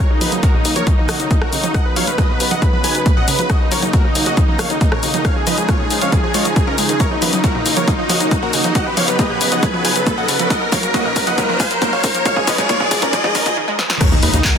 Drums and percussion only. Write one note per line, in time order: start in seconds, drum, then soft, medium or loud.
0.21 open hi-hat loud
0.21 shaker medium
0.32 closed hi-hat medium
0.32 shaker soft
0.43 kick loud
0.43 closed hi-hat medium
0.43 shaker soft
0.65 open hi-hat loud
0.65 shaker medium
0.76 closed hi-hat medium
0.76 shaker soft
0.87 kick loud
0.87 closed hi-hat medium
0.87 shaker soft
1.09 cross-stick medium
1.09 open hi-hat loud
1.09 shaker medium
1.20 closed hi-hat medium
1.20 shaker soft
1.31 kick loud
1.31 closed hi-hat medium
1.31 shaker soft
1.42 cross-stick medium
1.53 open hi-hat loud
1.53 shaker medium
1.64 closed hi-hat medium
1.64 shaker soft
1.74 kick loud
1.74 cross-stick medium
1.74 closed hi-hat medium
1.74 shaker soft
1.96 open hi-hat loud
1.96 shaker medium
2.07 closed hi-hat medium
2.07 shaker soft
2.18 kick loud
2.18 cross-stick medium
2.18 closed hi-hat medium
2.18 shaker soft
2.40 open hi-hat loud
2.40 shaker medium
2.51 closed hi-hat medium
2.51 shaker soft
2.62 kick loud
2.62 closed hi-hat medium
2.62 shaker soft
2.84 open hi-hat loud
2.84 shaker medium
2.95 closed hi-hat medium
2.95 shaker soft
3.06 kick loud
3.06 closed hi-hat medium
3.06 shaker soft
3.28 open hi-hat loud
3.28 shaker medium
3.39 closed hi-hat medium
3.39 shaker soft
3.50 kick loud
3.50 cross-stick medium
3.50 closed hi-hat medium
3.50 shaker soft
3.72 open hi-hat loud
3.72 shaker medium
3.82 closed hi-hat medium
3.82 shaker soft
3.93 kick loud
3.93 closed hi-hat medium
3.93 shaker soft
4.15 open hi-hat loud
4.15 shaker medium
4.26 closed hi-hat medium
4.26 shaker soft
4.37 kick loud
4.37 closed hi-hat medium
4.37 shaker soft
4.59 cross-stick medium
4.59 open hi-hat loud
4.59 shaker medium
4.70 closed hi-hat medium
4.70 shaker soft
4.81 kick loud
4.81 closed hi-hat medium
4.81 shaker soft
4.92 cross-stick medium
5.03 open hi-hat loud
5.03 shaker medium
5.14 closed hi-hat medium
5.14 shaker soft
5.25 kick loud
5.25 cross-stick medium
5.25 closed hi-hat medium
5.25 shaker soft
5.47 open hi-hat loud
5.47 shaker medium
5.58 closed hi-hat medium
5.58 shaker soft
5.69 kick loud
5.69 cross-stick medium
5.69 closed hi-hat medium
5.69 shaker soft
5.90 open hi-hat loud
5.90 shaker medium
6.01 closed hi-hat medium
6.01 shaker soft
6.12 kick loud
6.12 closed hi-hat medium
6.12 shaker soft
6.34 open hi-hat loud
6.34 shaker medium
6.45 closed hi-hat medium
6.45 shaker soft
6.56 kick loud
6.56 closed hi-hat medium
6.56 shaker soft
6.78 open hi-hat loud
6.78 shaker medium
6.89 closed hi-hat medium
6.89 shaker soft
7.00 kick loud
7.00 closed hi-hat medium
7.00 shaker soft
7.22 open hi-hat loud
7.22 shaker medium
7.33 closed hi-hat medium
7.33 shaker soft
7.44 kick loud
7.44 closed hi-hat medium
7.44 shaker soft
7.66 open hi-hat loud
7.66 shaker medium
7.77 closed hi-hat medium
7.77 shaker soft
7.88 kick loud
7.88 closed hi-hat medium
7.88 shaker soft
8.09 open hi-hat loud
8.09 shaker medium
8.20 closed hi-hat medium
8.20 shaker soft
8.31 kick loud
8.31 closed hi-hat medium
8.31 shaker soft
8.53 open hi-hat loud
8.53 shaker medium
8.64 closed hi-hat medium
8.64 shaker soft
8.75 kick loud
8.75 closed hi-hat medium
8.75 shaker soft
8.97 open hi-hat loud
8.97 shaker medium
9.08 closed hi-hat medium
9.08 shaker soft
9.19 kick loud
9.19 closed hi-hat medium
9.19 shaker soft
9.41 open hi-hat loud
9.41 shaker medium
9.52 closed hi-hat medium
9.52 shaker soft
9.63 kick loud
9.63 closed hi-hat medium
9.63 shaker soft
9.85 open hi-hat loud
9.85 shaker medium
9.96 closed hi-hat medium
9.96 shaker soft
10.07 kick loud
10.07 closed hi-hat medium
10.07 shaker soft
10.28 open hi-hat loud
10.28 shaker medium
10.39 closed hi-hat medium
10.39 shaker soft
10.50 kick loud
10.50 closed hi-hat medium
10.50 shaker soft
10.72 kick loud
10.72 open hi-hat loud
10.72 shaker medium
10.83 closed hi-hat medium
10.83 shaker soft
10.94 kick loud
10.94 closed hi-hat medium
10.94 shaker soft
11.16 kick loud
11.16 open hi-hat loud
11.16 shaker medium
11.27 closed hi-hat medium
11.27 shaker soft
11.38 kick loud
11.38 closed hi-hat medium
11.38 shaker soft
11.60 kick loud
11.60 open hi-hat loud
11.60 shaker medium
11.71 closed hi-hat medium
11.71 shaker soft
11.82 kick loud
11.82 closed hi-hat medium
11.82 shaker soft
12.04 kick loud
12.04 open hi-hat loud
12.04 shaker medium
12.15 closed hi-hat medium
12.15 shaker soft
12.25 kick loud
12.25 closed hi-hat medium
12.25 shaker soft
12.36 kick medium
12.47 kick loud
12.47 open hi-hat loud
12.47 shaker medium
12.58 kick medium
12.58 closed hi-hat medium
12.58 shaker soft
12.69 kick loud
12.69 closed hi-hat medium
12.69 shaker soft
12.80 kick loud
12.91 kick loud
12.91 open hi-hat loud
12.91 shaker medium
13.02 kick medium
13.02 closed hi-hat medium
13.02 shaker soft
13.13 kick loud
13.13 closed hi-hat medium
13.13 shaker soft
13.24 kick medium
13.35 kick loud
13.35 open hi-hat loud
13.35 shaker medium
13.46 kick medium
13.46 closed hi-hat medium
13.46 shaker soft
13.79 snare medium
13.90 snare medium
14.01 kick loud
14.01 cross-stick medium
14.01 closed hi-hat medium
14.01 crash loud
14.01 shaker medium
14.12 shaker soft
14.23 open hi-hat loud
14.34 closed hi-hat medium
14.34 shaker medium
14.45 kick loud
14.45 clap loud
14.45 closed hi-hat medium